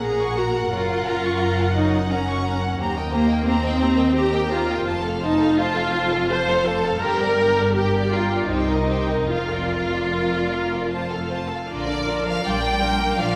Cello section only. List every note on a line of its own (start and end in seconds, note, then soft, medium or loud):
0.00 0.68 A#2 soft
0.73 2.75 F#2 medium
2.80 4.83 D#2 medium
4.87 6.97 F2 medium
7.02 8.51 G2 medium
8.51 9.28 C3 medium
9.29 11.46 F2 medium
11.70 12.23 D3 medium
12.27 12.46 F3 medium
12.45 13.18 G3 medium
13.17 13.36 F3 medium